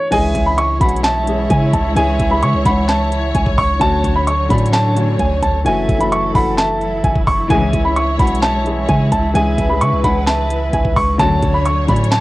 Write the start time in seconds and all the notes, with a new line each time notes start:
Already playing: E3 A3 C#4 F#4
0.11 C#2 E3 G#3 C#4 E4 G#4 C#5 D#5 G#5, kick, closed hi-hat, crash
0.25 E5
0.35 C#2, kick, closed hi-hat
0.46 B5
0.58 C#6, closed hi-hat
0.80 B1 E3 G#3 C#4 F#4 F#5 B5, kick, closed hi-hat, open hi-hat
0.89 closed hi-hat
0.96 closed hi-hat
1.04 E5 A5, snare, clap, closed hi-hat
1.26 E3 G#3 C#4 G#4, closed hi-hat
1.50 C#3 G#5, kick, closed hi-hat
1.73 C#2 A5, kick, closed hi-hat
1.95 C#2 E3 G#3 C#4 G#4 E5 G#5, closed hi-hat
2.20 C#2, kick, closed hi-hat
2.30 E3 G#3 C#4 G#4 B5
2.42 C#3 C#6, closed hi-hat
2.54 C#2
2.64 C#2 E3 G#3 C#4 E4 F#5 B5, kick, closed hi-hat
2.88 E5 A5, snare, clap, closed hi-hat
3.12 closed hi-hat
3.35 C#2 G#5, kick, closed hi-hat
3.46 kick
3.58 C#6, kick, open hi-hat
3.80 D2 D3 F#3 A3 C#4 F#4 C#5 A5, kick, closed hi-hat
4.04 D2, kick, closed hi-hat
4.16 B5
4.27 C#6, closed hi-hat
4.49 A2 D3 A3 C#4 F#4 D5 B5, kick, closed hi-hat, open hi-hat
4.58 closed hi-hat
4.66 closed hi-hat
4.73 C#5 A5, snare, clap, closed hi-hat
4.95 D3 A3 C#4 F#4, closed hi-hat
5.19 D2 G#5, kick, closed hi-hat
5.43 D2 A5, kick, closed hi-hat
5.64 F#1 E3 F#3 A3 C#4 E4 F#4 A4 E5 G#5, closed hi-hat
5.89 F#1, kick, closed hi-hat
5.98 E3 A3 C#4 F#4 B5, closed hi-hat
6.12 C#6, closed hi-hat
6.34 F#1 E3 A3 C#4 F#4 F#5 B5, kick, open hi-hat
6.58 E5 A5, snare, clap, closed hi-hat
6.81 closed hi-hat
7.04 F#1 G#5, kick, closed hi-hat
7.16 kick
7.27 C#6, kick, open hi-hat
7.49 C#2 G#2 C#3 E3 G#3 C#4 G#4 C#5 E5 G#5, kick, closed hi-hat
7.73 C#2, kick, closed hi-hat
7.85 B5
7.96 C#6, closed hi-hat
8.18 B1 E3 G#3 C#4 F#4 F#5 B5, kick, closed hi-hat, open hi-hat
8.27 closed hi-hat
8.35 closed hi-hat
8.42 E5 A5, snare, clap, closed hi-hat
8.64 E3 G#3 C#4 G#4, closed hi-hat
8.89 C#3 G#5, kick, closed hi-hat
9.12 C#2 A5, kick, closed hi-hat
9.34 C#2 E3 G#3 C#4 G#4 B4 E5 G#5, closed hi-hat
9.58 C#2, kick, closed hi-hat
9.68 E3 G#3 C#4 G#4 B5
9.81 C#3 C#6, closed hi-hat
9.93 C#2
10.03 C#2 E3 G#3 C#4 E4 F#5 B5, kick, closed hi-hat
10.27 E5 A5, snare, clap, closed hi-hat
10.50 closed hi-hat
10.73 C#2 G#5, kick, closed hi-hat
10.85 kick
10.96 C#6, kick, open hi-hat
11.18 D2 F#2 D3 F#3 A3 C#4 F#4 C#5 A5, kick, closed hi-hat
11.43 D2, kick, closed hi-hat
11.54 B5
11.66 C#6, closed hi-hat
11.87 A2 D3 A3 C#4 F#4 D5 B5, kick, closed hi-hat, open hi-hat
11.96 closed hi-hat
12.04 closed hi-hat
12.12 C#5 A5, snare, clap, closed hi-hat